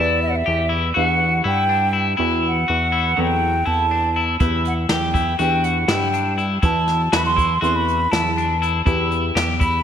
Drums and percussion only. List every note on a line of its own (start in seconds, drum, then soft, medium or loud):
4.40 kick medium
4.40 closed hi-hat medium
4.65 closed hi-hat medium
4.89 snare loud
4.89 closed hi-hat medium
5.15 kick medium
5.15 closed hi-hat medium
5.39 closed hi-hat medium
5.64 closed hi-hat medium
5.88 snare medium
5.88 closed hi-hat medium
6.14 closed hi-hat medium
6.38 closed hi-hat medium
6.63 kick medium
6.63 closed hi-hat medium
6.88 snare soft
6.88 closed hi-hat soft
7.13 snare loud
7.13 closed hi-hat medium
7.38 kick medium
7.38 closed hi-hat medium
7.63 closed hi-hat medium
7.88 closed hi-hat medium
8.13 snare medium
8.13 closed hi-hat medium
8.38 closed hi-hat soft
8.63 closed hi-hat medium
8.87 kick medium
8.87 closed hi-hat medium
9.12 closed hi-hat medium
9.37 snare loud
9.37 closed hi-hat medium
9.61 kick medium
9.61 closed hi-hat medium